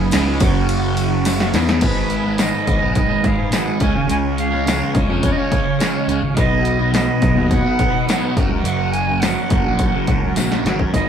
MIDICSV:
0, 0, Header, 1, 7, 480
1, 0, Start_track
1, 0, Tempo, 568720
1, 1537, Time_signature, 4, 2, 24, 8
1, 9359, End_track
2, 0, Start_track
2, 0, Title_t, "Flute"
2, 0, Program_c, 0, 73
2, 1553, Note_on_c, 0, 71, 74
2, 1991, Note_off_c, 0, 71, 0
2, 2029, Note_on_c, 0, 75, 77
2, 2469, Note_off_c, 0, 75, 0
2, 2512, Note_on_c, 0, 75, 80
2, 2760, Note_on_c, 0, 77, 83
2, 2773, Note_off_c, 0, 75, 0
2, 2988, Note_off_c, 0, 77, 0
2, 2996, Note_on_c, 0, 78, 79
2, 3221, Note_on_c, 0, 80, 88
2, 3234, Note_off_c, 0, 78, 0
2, 3459, Note_off_c, 0, 80, 0
2, 3463, Note_on_c, 0, 80, 102
2, 3516, Note_off_c, 0, 80, 0
2, 3705, Note_on_c, 0, 77, 85
2, 4148, Note_off_c, 0, 77, 0
2, 4418, Note_on_c, 0, 73, 88
2, 4491, Note_on_c, 0, 75, 69
2, 4503, Note_off_c, 0, 73, 0
2, 4540, Note_on_c, 0, 73, 89
2, 4553, Note_off_c, 0, 75, 0
2, 5140, Note_off_c, 0, 73, 0
2, 5386, Note_on_c, 0, 75, 88
2, 5830, Note_off_c, 0, 75, 0
2, 5849, Note_on_c, 0, 75, 72
2, 6302, Note_off_c, 0, 75, 0
2, 6329, Note_on_c, 0, 78, 93
2, 7023, Note_off_c, 0, 78, 0
2, 7308, Note_on_c, 0, 78, 87
2, 7533, Note_on_c, 0, 80, 105
2, 7546, Note_off_c, 0, 78, 0
2, 7765, Note_on_c, 0, 78, 76
2, 7778, Note_off_c, 0, 80, 0
2, 8977, Note_off_c, 0, 78, 0
2, 9227, Note_on_c, 0, 75, 82
2, 9359, Note_off_c, 0, 75, 0
2, 9359, End_track
3, 0, Start_track
3, 0, Title_t, "Transistor combo organ"
3, 0, Program_c, 1, 18
3, 0, Note_on_c, 1, 59, 65
3, 0, Note_on_c, 1, 63, 61
3, 0, Note_on_c, 1, 68, 67
3, 0, Note_on_c, 1, 71, 81
3, 313, Note_off_c, 1, 71, 0
3, 330, Note_off_c, 1, 59, 0
3, 337, Note_off_c, 1, 63, 0
3, 340, Note_off_c, 1, 68, 0
3, 345, Note_on_c, 1, 61, 61
3, 348, Note_on_c, 1, 54, 66
3, 348, Note_on_c, 1, 66, 57
3, 348, Note_on_c, 1, 73, 75
3, 1290, Note_off_c, 1, 61, 0
3, 1291, Note_off_c, 1, 54, 0
3, 1291, Note_off_c, 1, 66, 0
3, 1291, Note_off_c, 1, 73, 0
3, 1303, Note_on_c, 1, 68, 61
3, 1305, Note_on_c, 1, 59, 65
3, 1313, Note_on_c, 1, 63, 57
3, 1313, Note_on_c, 1, 71, 67
3, 1517, Note_off_c, 1, 63, 0
3, 1517, Note_off_c, 1, 71, 0
3, 1521, Note_off_c, 1, 59, 0
3, 1523, Note_off_c, 1, 68, 0
3, 1527, Note_on_c, 1, 63, 55
3, 1527, Note_on_c, 1, 71, 68
3, 1531, Note_on_c, 1, 59, 67
3, 1533, Note_on_c, 1, 68, 62
3, 3194, Note_off_c, 1, 63, 0
3, 3194, Note_off_c, 1, 71, 0
3, 3196, Note_off_c, 1, 59, 0
3, 3214, Note_on_c, 1, 73, 69
3, 3221, Note_on_c, 1, 65, 60
3, 3222, Note_on_c, 1, 61, 63
3, 5344, Note_off_c, 1, 68, 0
3, 5357, Note_off_c, 1, 73, 0
3, 5360, Note_off_c, 1, 65, 0
3, 5361, Note_off_c, 1, 61, 0
3, 5371, Note_on_c, 1, 59, 66
3, 5373, Note_on_c, 1, 63, 65
3, 5373, Note_on_c, 1, 71, 72
3, 5375, Note_on_c, 1, 66, 62
3, 7042, Note_off_c, 1, 59, 0
3, 7043, Note_off_c, 1, 63, 0
3, 7043, Note_off_c, 1, 71, 0
3, 7063, Note_on_c, 1, 58, 55
3, 7070, Note_on_c, 1, 70, 64
3, 7074, Note_on_c, 1, 61, 55
3, 9191, Note_off_c, 1, 66, 0
3, 9205, Note_off_c, 1, 58, 0
3, 9208, Note_off_c, 1, 70, 0
3, 9211, Note_off_c, 1, 61, 0
3, 9233, Note_on_c, 1, 68, 62
3, 9233, Note_on_c, 1, 71, 66
3, 9234, Note_on_c, 1, 63, 54
3, 9235, Note_on_c, 1, 59, 57
3, 9359, Note_off_c, 1, 59, 0
3, 9359, Note_off_c, 1, 63, 0
3, 9359, Note_off_c, 1, 68, 0
3, 9359, Note_off_c, 1, 71, 0
3, 9359, End_track
4, 0, Start_track
4, 0, Title_t, "Distorted electric guitar"
4, 0, Program_c, 2, 30
4, 0, Note_on_c, 2, 42, 101
4, 0, Note_on_c, 2, 49, 85
4, 0, Note_on_c, 2, 54, 102
4, 95, Note_off_c, 2, 49, 0
4, 98, Note_off_c, 2, 42, 0
4, 102, Note_off_c, 2, 54, 0
4, 105, Note_on_c, 2, 49, 95
4, 107, Note_on_c, 2, 56, 109
4, 115, Note_on_c, 2, 61, 104
4, 336, Note_off_c, 2, 49, 0
4, 337, Note_off_c, 2, 56, 0
4, 340, Note_off_c, 2, 61, 0
4, 345, Note_on_c, 2, 42, 87
4, 348, Note_on_c, 2, 49, 92
4, 352, Note_on_c, 2, 54, 102
4, 1292, Note_off_c, 2, 42, 0
4, 1294, Note_off_c, 2, 49, 0
4, 1295, Note_off_c, 2, 54, 0
4, 1309, Note_on_c, 2, 52, 84
4, 1313, Note_on_c, 2, 59, 104
4, 1319, Note_on_c, 2, 64, 96
4, 1534, Note_on_c, 2, 44, 75
4, 1536, Note_off_c, 2, 52, 0
4, 1537, Note_off_c, 2, 59, 0
4, 1540, Note_off_c, 2, 64, 0
4, 1547, Note_on_c, 2, 51, 75
4, 1562, Note_on_c, 2, 56, 87
4, 1896, Note_off_c, 2, 56, 0
4, 1899, Note_on_c, 2, 56, 60
4, 1913, Note_off_c, 2, 51, 0
4, 1923, Note_on_c, 2, 51, 51
4, 2003, Note_off_c, 2, 44, 0
4, 2013, Note_on_c, 2, 44, 87
4, 2019, Note_off_c, 2, 51, 0
4, 2029, Note_on_c, 2, 51, 85
4, 2035, Note_off_c, 2, 56, 0
4, 2038, Note_on_c, 2, 56, 87
4, 2240, Note_off_c, 2, 44, 0
4, 2250, Note_on_c, 2, 44, 75
4, 2256, Note_off_c, 2, 51, 0
4, 2266, Note_on_c, 2, 51, 68
4, 2275, Note_off_c, 2, 56, 0
4, 2278, Note_on_c, 2, 56, 81
4, 2363, Note_off_c, 2, 56, 0
4, 2373, Note_on_c, 2, 56, 64
4, 2389, Note_off_c, 2, 51, 0
4, 2399, Note_on_c, 2, 51, 56
4, 2600, Note_off_c, 2, 56, 0
4, 2610, Note_on_c, 2, 56, 69
4, 2612, Note_off_c, 2, 44, 0
4, 2629, Note_off_c, 2, 51, 0
4, 2639, Note_on_c, 2, 51, 54
4, 2726, Note_on_c, 2, 44, 71
4, 2731, Note_off_c, 2, 51, 0
4, 2740, Note_off_c, 2, 56, 0
4, 2741, Note_on_c, 2, 51, 61
4, 2750, Note_on_c, 2, 56, 72
4, 2838, Note_off_c, 2, 56, 0
4, 2851, Note_off_c, 2, 51, 0
4, 2949, Note_off_c, 2, 44, 0
4, 2959, Note_on_c, 2, 44, 74
4, 2974, Note_on_c, 2, 51, 85
4, 2984, Note_on_c, 2, 56, 82
4, 3193, Note_off_c, 2, 44, 0
4, 3199, Note_off_c, 2, 51, 0
4, 3202, Note_on_c, 2, 49, 84
4, 3205, Note_off_c, 2, 56, 0
4, 3217, Note_on_c, 2, 56, 84
4, 3228, Note_on_c, 2, 61, 90
4, 3319, Note_off_c, 2, 61, 0
4, 3328, Note_off_c, 2, 56, 0
4, 3427, Note_off_c, 2, 49, 0
4, 3437, Note_on_c, 2, 49, 81
4, 3449, Note_on_c, 2, 56, 83
4, 3464, Note_on_c, 2, 61, 80
4, 3794, Note_off_c, 2, 61, 0
4, 3804, Note_on_c, 2, 61, 69
4, 3821, Note_off_c, 2, 56, 0
4, 3831, Note_on_c, 2, 56, 52
4, 3921, Note_off_c, 2, 49, 0
4, 3931, Note_on_c, 2, 49, 89
4, 3936, Note_off_c, 2, 56, 0
4, 3947, Note_off_c, 2, 61, 0
4, 3947, Note_on_c, 2, 56, 93
4, 3957, Note_on_c, 2, 61, 99
4, 4162, Note_off_c, 2, 49, 0
4, 4172, Note_on_c, 2, 49, 74
4, 4174, Note_off_c, 2, 56, 0
4, 4184, Note_on_c, 2, 56, 78
4, 4186, Note_off_c, 2, 61, 0
4, 4196, Note_on_c, 2, 61, 79
4, 4276, Note_off_c, 2, 61, 0
4, 4286, Note_on_c, 2, 61, 63
4, 4302, Note_off_c, 2, 56, 0
4, 4312, Note_on_c, 2, 56, 57
4, 4518, Note_off_c, 2, 61, 0
4, 4528, Note_on_c, 2, 61, 79
4, 4535, Note_off_c, 2, 49, 0
4, 4542, Note_off_c, 2, 56, 0
4, 4552, Note_on_c, 2, 56, 58
4, 4645, Note_on_c, 2, 49, 72
4, 4648, Note_off_c, 2, 56, 0
4, 4658, Note_on_c, 2, 56, 76
4, 4659, Note_off_c, 2, 61, 0
4, 4669, Note_on_c, 2, 61, 79
4, 4762, Note_off_c, 2, 61, 0
4, 4771, Note_off_c, 2, 56, 0
4, 4873, Note_off_c, 2, 49, 0
4, 4883, Note_on_c, 2, 49, 72
4, 4896, Note_on_c, 2, 56, 77
4, 4909, Note_on_c, 2, 61, 86
4, 5116, Note_off_c, 2, 49, 0
4, 5126, Note_on_c, 2, 49, 79
4, 5132, Note_off_c, 2, 56, 0
4, 5142, Note_on_c, 2, 56, 72
4, 5144, Note_off_c, 2, 61, 0
4, 5155, Note_on_c, 2, 61, 75
4, 5243, Note_off_c, 2, 61, 0
4, 5253, Note_off_c, 2, 56, 0
4, 5355, Note_off_c, 2, 49, 0
4, 5358, Note_on_c, 2, 47, 83
4, 5375, Note_on_c, 2, 54, 90
4, 5388, Note_on_c, 2, 59, 100
4, 5721, Note_off_c, 2, 59, 0
4, 5732, Note_on_c, 2, 59, 59
4, 5755, Note_off_c, 2, 54, 0
4, 5758, Note_on_c, 2, 54, 59
4, 5832, Note_off_c, 2, 47, 0
4, 5842, Note_on_c, 2, 47, 87
4, 5853, Note_off_c, 2, 54, 0
4, 5856, Note_off_c, 2, 59, 0
4, 5857, Note_on_c, 2, 54, 81
4, 5866, Note_on_c, 2, 59, 89
4, 6078, Note_off_c, 2, 47, 0
4, 6088, Note_on_c, 2, 47, 70
4, 6096, Note_off_c, 2, 54, 0
4, 6100, Note_off_c, 2, 59, 0
4, 6100, Note_on_c, 2, 54, 75
4, 6110, Note_on_c, 2, 59, 78
4, 6193, Note_off_c, 2, 59, 0
4, 6203, Note_on_c, 2, 59, 66
4, 6221, Note_off_c, 2, 54, 0
4, 6231, Note_on_c, 2, 54, 64
4, 6439, Note_off_c, 2, 59, 0
4, 6450, Note_on_c, 2, 59, 64
4, 6455, Note_off_c, 2, 47, 0
4, 6463, Note_off_c, 2, 54, 0
4, 6473, Note_on_c, 2, 54, 54
4, 6575, Note_on_c, 2, 47, 64
4, 6580, Note_off_c, 2, 54, 0
4, 6587, Note_off_c, 2, 59, 0
4, 6590, Note_on_c, 2, 54, 69
4, 6597, Note_on_c, 2, 59, 78
4, 6693, Note_off_c, 2, 59, 0
4, 6700, Note_off_c, 2, 54, 0
4, 6799, Note_off_c, 2, 47, 0
4, 6809, Note_on_c, 2, 47, 75
4, 6820, Note_on_c, 2, 54, 91
4, 6837, Note_on_c, 2, 59, 89
4, 7042, Note_off_c, 2, 47, 0
4, 7047, Note_off_c, 2, 54, 0
4, 7048, Note_on_c, 2, 42, 85
4, 7056, Note_off_c, 2, 59, 0
4, 7064, Note_on_c, 2, 49, 91
4, 7078, Note_on_c, 2, 54, 98
4, 7169, Note_off_c, 2, 54, 0
4, 7172, Note_off_c, 2, 49, 0
4, 7281, Note_off_c, 2, 42, 0
4, 7291, Note_on_c, 2, 42, 78
4, 7301, Note_on_c, 2, 49, 85
4, 7314, Note_on_c, 2, 54, 84
4, 7651, Note_off_c, 2, 54, 0
4, 7661, Note_on_c, 2, 54, 60
4, 7678, Note_off_c, 2, 49, 0
4, 7689, Note_on_c, 2, 49, 55
4, 7770, Note_off_c, 2, 42, 0
4, 7781, Note_on_c, 2, 42, 78
4, 7784, Note_off_c, 2, 49, 0
4, 7793, Note_off_c, 2, 54, 0
4, 7794, Note_on_c, 2, 49, 83
4, 7804, Note_on_c, 2, 54, 98
4, 8005, Note_off_c, 2, 42, 0
4, 8015, Note_on_c, 2, 42, 74
4, 8021, Note_off_c, 2, 49, 0
4, 8031, Note_on_c, 2, 49, 71
4, 8032, Note_off_c, 2, 54, 0
4, 8042, Note_on_c, 2, 54, 81
4, 8129, Note_off_c, 2, 54, 0
4, 8139, Note_on_c, 2, 54, 71
4, 8155, Note_off_c, 2, 49, 0
4, 8165, Note_on_c, 2, 49, 58
4, 8366, Note_off_c, 2, 54, 0
4, 8376, Note_on_c, 2, 54, 71
4, 8380, Note_off_c, 2, 42, 0
4, 8394, Note_off_c, 2, 49, 0
4, 8404, Note_on_c, 2, 49, 51
4, 8503, Note_on_c, 2, 42, 70
4, 8509, Note_off_c, 2, 49, 0
4, 8519, Note_on_c, 2, 49, 76
4, 8521, Note_off_c, 2, 54, 0
4, 8531, Note_on_c, 2, 54, 75
4, 8621, Note_off_c, 2, 54, 0
4, 8629, Note_off_c, 2, 49, 0
4, 8740, Note_off_c, 2, 42, 0
4, 8750, Note_on_c, 2, 42, 73
4, 8766, Note_on_c, 2, 49, 70
4, 8774, Note_on_c, 2, 54, 86
4, 8979, Note_off_c, 2, 42, 0
4, 8989, Note_on_c, 2, 42, 62
4, 8995, Note_off_c, 2, 49, 0
4, 9003, Note_off_c, 2, 54, 0
4, 9005, Note_on_c, 2, 49, 62
4, 9013, Note_on_c, 2, 54, 70
4, 9100, Note_off_c, 2, 54, 0
4, 9106, Note_off_c, 2, 49, 0
4, 9213, Note_off_c, 2, 42, 0
4, 9229, Note_on_c, 2, 44, 73
4, 9240, Note_on_c, 2, 51, 76
4, 9253, Note_on_c, 2, 56, 86
4, 9359, Note_off_c, 2, 44, 0
4, 9359, Note_off_c, 2, 51, 0
4, 9359, Note_off_c, 2, 56, 0
4, 9359, End_track
5, 0, Start_track
5, 0, Title_t, "Picked electric bass"
5, 0, Program_c, 3, 34
5, 0, Note_on_c, 3, 30, 100
5, 89, Note_off_c, 3, 30, 0
5, 118, Note_on_c, 3, 37, 96
5, 333, Note_off_c, 3, 37, 0
5, 345, Note_on_c, 3, 30, 91
5, 1265, Note_off_c, 3, 30, 0
5, 1300, Note_on_c, 3, 40, 89
5, 1521, Note_off_c, 3, 40, 0
5, 1539, Note_on_c, 3, 32, 80
5, 2134, Note_off_c, 3, 32, 0
5, 2262, Note_on_c, 3, 32, 73
5, 2359, Note_off_c, 3, 32, 0
5, 2389, Note_on_c, 3, 35, 76
5, 2582, Note_off_c, 3, 35, 0
5, 3214, Note_on_c, 3, 37, 82
5, 3314, Note_off_c, 3, 37, 0
5, 3340, Note_on_c, 3, 32, 88
5, 3438, Note_off_c, 3, 32, 0
5, 3462, Note_on_c, 3, 37, 93
5, 4057, Note_off_c, 3, 37, 0
5, 4180, Note_on_c, 3, 37, 79
5, 4278, Note_off_c, 3, 37, 0
5, 4299, Note_on_c, 3, 41, 83
5, 4498, Note_off_c, 3, 41, 0
5, 5132, Note_on_c, 3, 37, 87
5, 5234, Note_off_c, 3, 37, 0
5, 5247, Note_on_c, 3, 32, 91
5, 5352, Note_off_c, 3, 32, 0
5, 5376, Note_on_c, 3, 35, 90
5, 5976, Note_off_c, 3, 35, 0
5, 6101, Note_on_c, 3, 35, 81
5, 6201, Note_off_c, 3, 35, 0
5, 6209, Note_on_c, 3, 39, 83
5, 6413, Note_off_c, 3, 39, 0
5, 7065, Note_on_c, 3, 30, 86
5, 7161, Note_off_c, 3, 30, 0
5, 7166, Note_on_c, 3, 37, 92
5, 7273, Note_off_c, 3, 37, 0
5, 7290, Note_on_c, 3, 30, 82
5, 7894, Note_off_c, 3, 30, 0
5, 8026, Note_on_c, 3, 30, 81
5, 8125, Note_off_c, 3, 30, 0
5, 8146, Note_on_c, 3, 34, 70
5, 8345, Note_off_c, 3, 34, 0
5, 8509, Note_on_c, 3, 37, 72
5, 8724, Note_off_c, 3, 37, 0
5, 8744, Note_on_c, 3, 34, 70
5, 8961, Note_off_c, 3, 34, 0
5, 8989, Note_on_c, 3, 32, 81
5, 9204, Note_off_c, 3, 32, 0
5, 9230, Note_on_c, 3, 32, 88
5, 9359, Note_off_c, 3, 32, 0
5, 9359, End_track
6, 0, Start_track
6, 0, Title_t, "Muted distorted electric guitar strokes"
6, 2848, Note_on_c, 9, 29, 48
6, 2933, Note_off_c, 9, 29, 0
6, 3329, Note_on_c, 9, 29, 50
6, 3413, Note_off_c, 9, 29, 0
6, 4772, Note_on_c, 9, 29, 51
6, 4856, Note_off_c, 9, 29, 0
6, 5253, Note_on_c, 9, 29, 47
6, 5337, Note_off_c, 9, 29, 0
6, 6703, Note_on_c, 9, 29, 44
6, 6787, Note_off_c, 9, 29, 0
6, 7180, Note_on_c, 9, 29, 55
6, 7264, Note_off_c, 9, 29, 0
6, 8631, Note_on_c, 9, 29, 47
6, 8715, Note_off_c, 9, 29, 0
6, 9110, Note_on_c, 9, 29, 49
6, 9195, Note_off_c, 9, 29, 0
6, 9359, End_track
7, 0, Start_track
7, 0, Title_t, "Drums"
7, 94, Note_on_c, 9, 54, 93
7, 103, Note_on_c, 9, 51, 97
7, 111, Note_on_c, 9, 38, 115
7, 178, Note_off_c, 9, 54, 0
7, 188, Note_off_c, 9, 51, 0
7, 195, Note_off_c, 9, 38, 0
7, 336, Note_on_c, 9, 54, 80
7, 342, Note_on_c, 9, 51, 91
7, 343, Note_on_c, 9, 36, 115
7, 421, Note_off_c, 9, 54, 0
7, 426, Note_off_c, 9, 51, 0
7, 428, Note_off_c, 9, 36, 0
7, 581, Note_on_c, 9, 51, 85
7, 665, Note_off_c, 9, 51, 0
7, 818, Note_on_c, 9, 51, 68
7, 822, Note_on_c, 9, 54, 65
7, 902, Note_off_c, 9, 51, 0
7, 906, Note_off_c, 9, 54, 0
7, 1057, Note_on_c, 9, 51, 96
7, 1062, Note_on_c, 9, 54, 97
7, 1065, Note_on_c, 9, 38, 58
7, 1141, Note_off_c, 9, 51, 0
7, 1147, Note_off_c, 9, 54, 0
7, 1149, Note_off_c, 9, 38, 0
7, 1184, Note_on_c, 9, 38, 59
7, 1268, Note_off_c, 9, 38, 0
7, 1297, Note_on_c, 9, 51, 68
7, 1304, Note_on_c, 9, 38, 82
7, 1306, Note_on_c, 9, 54, 69
7, 1381, Note_off_c, 9, 51, 0
7, 1389, Note_off_c, 9, 38, 0
7, 1391, Note_off_c, 9, 54, 0
7, 1424, Note_on_c, 9, 38, 94
7, 1509, Note_off_c, 9, 38, 0
7, 1529, Note_on_c, 9, 42, 74
7, 1529, Note_on_c, 9, 49, 85
7, 1538, Note_on_c, 9, 36, 100
7, 1613, Note_off_c, 9, 42, 0
7, 1613, Note_off_c, 9, 49, 0
7, 1622, Note_off_c, 9, 36, 0
7, 1771, Note_on_c, 9, 42, 55
7, 1856, Note_off_c, 9, 42, 0
7, 2010, Note_on_c, 9, 42, 64
7, 2018, Note_on_c, 9, 38, 94
7, 2021, Note_on_c, 9, 54, 87
7, 2095, Note_off_c, 9, 42, 0
7, 2102, Note_off_c, 9, 38, 0
7, 2105, Note_off_c, 9, 54, 0
7, 2257, Note_on_c, 9, 42, 65
7, 2258, Note_on_c, 9, 36, 83
7, 2341, Note_off_c, 9, 42, 0
7, 2342, Note_off_c, 9, 36, 0
7, 2493, Note_on_c, 9, 42, 66
7, 2497, Note_on_c, 9, 36, 68
7, 2578, Note_off_c, 9, 42, 0
7, 2582, Note_off_c, 9, 36, 0
7, 2735, Note_on_c, 9, 42, 56
7, 2736, Note_on_c, 9, 36, 86
7, 2819, Note_off_c, 9, 42, 0
7, 2821, Note_off_c, 9, 36, 0
7, 2971, Note_on_c, 9, 42, 84
7, 2979, Note_on_c, 9, 38, 97
7, 2982, Note_on_c, 9, 54, 99
7, 3056, Note_off_c, 9, 42, 0
7, 3063, Note_off_c, 9, 38, 0
7, 3067, Note_off_c, 9, 54, 0
7, 3210, Note_on_c, 9, 42, 65
7, 3214, Note_on_c, 9, 36, 91
7, 3294, Note_off_c, 9, 42, 0
7, 3299, Note_off_c, 9, 36, 0
7, 3456, Note_on_c, 9, 42, 87
7, 3541, Note_off_c, 9, 42, 0
7, 3699, Note_on_c, 9, 42, 52
7, 3783, Note_off_c, 9, 42, 0
7, 3942, Note_on_c, 9, 54, 78
7, 3945, Note_on_c, 9, 42, 69
7, 3952, Note_on_c, 9, 38, 93
7, 4026, Note_off_c, 9, 54, 0
7, 4029, Note_off_c, 9, 42, 0
7, 4037, Note_off_c, 9, 38, 0
7, 4175, Note_on_c, 9, 42, 66
7, 4177, Note_on_c, 9, 36, 98
7, 4260, Note_off_c, 9, 42, 0
7, 4261, Note_off_c, 9, 36, 0
7, 4414, Note_on_c, 9, 42, 77
7, 4415, Note_on_c, 9, 36, 76
7, 4499, Note_off_c, 9, 42, 0
7, 4500, Note_off_c, 9, 36, 0
7, 4656, Note_on_c, 9, 36, 87
7, 4656, Note_on_c, 9, 42, 57
7, 4740, Note_off_c, 9, 42, 0
7, 4741, Note_off_c, 9, 36, 0
7, 4898, Note_on_c, 9, 54, 93
7, 4899, Note_on_c, 9, 42, 72
7, 4906, Note_on_c, 9, 38, 97
7, 4982, Note_off_c, 9, 54, 0
7, 4983, Note_off_c, 9, 42, 0
7, 4991, Note_off_c, 9, 38, 0
7, 5139, Note_on_c, 9, 42, 55
7, 5224, Note_off_c, 9, 42, 0
7, 5375, Note_on_c, 9, 42, 80
7, 5376, Note_on_c, 9, 36, 113
7, 5460, Note_off_c, 9, 42, 0
7, 5461, Note_off_c, 9, 36, 0
7, 5613, Note_on_c, 9, 42, 58
7, 5698, Note_off_c, 9, 42, 0
7, 5855, Note_on_c, 9, 42, 64
7, 5860, Note_on_c, 9, 54, 85
7, 5863, Note_on_c, 9, 38, 97
7, 5940, Note_off_c, 9, 42, 0
7, 5944, Note_off_c, 9, 54, 0
7, 5947, Note_off_c, 9, 38, 0
7, 6093, Note_on_c, 9, 42, 60
7, 6096, Note_on_c, 9, 36, 85
7, 6177, Note_off_c, 9, 42, 0
7, 6181, Note_off_c, 9, 36, 0
7, 6336, Note_on_c, 9, 36, 78
7, 6337, Note_on_c, 9, 42, 68
7, 6420, Note_off_c, 9, 36, 0
7, 6421, Note_off_c, 9, 42, 0
7, 6575, Note_on_c, 9, 42, 55
7, 6578, Note_on_c, 9, 36, 83
7, 6659, Note_off_c, 9, 42, 0
7, 6663, Note_off_c, 9, 36, 0
7, 6823, Note_on_c, 9, 54, 88
7, 6827, Note_on_c, 9, 42, 69
7, 6834, Note_on_c, 9, 38, 98
7, 6908, Note_off_c, 9, 54, 0
7, 6911, Note_off_c, 9, 42, 0
7, 6919, Note_off_c, 9, 38, 0
7, 7062, Note_on_c, 9, 36, 102
7, 7063, Note_on_c, 9, 42, 61
7, 7146, Note_off_c, 9, 36, 0
7, 7147, Note_off_c, 9, 42, 0
7, 7302, Note_on_c, 9, 42, 85
7, 7386, Note_off_c, 9, 42, 0
7, 7541, Note_on_c, 9, 42, 54
7, 7625, Note_off_c, 9, 42, 0
7, 7781, Note_on_c, 9, 42, 79
7, 7789, Note_on_c, 9, 38, 100
7, 7792, Note_on_c, 9, 54, 81
7, 7866, Note_off_c, 9, 42, 0
7, 7873, Note_off_c, 9, 38, 0
7, 7876, Note_off_c, 9, 54, 0
7, 8020, Note_on_c, 9, 42, 70
7, 8024, Note_on_c, 9, 36, 91
7, 8105, Note_off_c, 9, 42, 0
7, 8109, Note_off_c, 9, 36, 0
7, 8261, Note_on_c, 9, 42, 75
7, 8265, Note_on_c, 9, 36, 80
7, 8346, Note_off_c, 9, 42, 0
7, 8350, Note_off_c, 9, 36, 0
7, 8502, Note_on_c, 9, 42, 55
7, 8506, Note_on_c, 9, 36, 70
7, 8587, Note_off_c, 9, 42, 0
7, 8591, Note_off_c, 9, 36, 0
7, 8745, Note_on_c, 9, 42, 77
7, 8751, Note_on_c, 9, 54, 98
7, 8753, Note_on_c, 9, 38, 57
7, 8830, Note_off_c, 9, 42, 0
7, 8835, Note_off_c, 9, 54, 0
7, 8837, Note_off_c, 9, 38, 0
7, 8876, Note_on_c, 9, 38, 55
7, 8960, Note_off_c, 9, 38, 0
7, 8996, Note_on_c, 9, 42, 57
7, 9003, Note_on_c, 9, 38, 75
7, 9080, Note_off_c, 9, 42, 0
7, 9088, Note_off_c, 9, 38, 0
7, 9110, Note_on_c, 9, 36, 70
7, 9195, Note_off_c, 9, 36, 0
7, 9231, Note_on_c, 9, 36, 86
7, 9235, Note_on_c, 9, 42, 79
7, 9315, Note_off_c, 9, 36, 0
7, 9319, Note_off_c, 9, 42, 0
7, 9359, End_track
0, 0, End_of_file